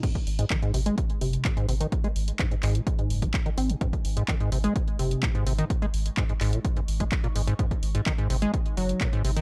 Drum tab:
CC |x---------------|----------------|----------------|----------------|
HH |xxoxxxoxxxoxxxox|xxoxxxoxxxoxxxox|xxoxxxoxxxoxxxox|xxoxxxoxxxoxxxox|
CP |----x-------x---|----x-x-----x---|----x-------x---|----x-x-----x---|
BD |oo--o---o---o---|o---o---o--oo---|oo--o---o---o---|o---o---o--oo---|

CC |----------------|
HH |xxoxxxoxxxoxxxox|
CP |----x-------x---|
BD |oo--o---o---o---|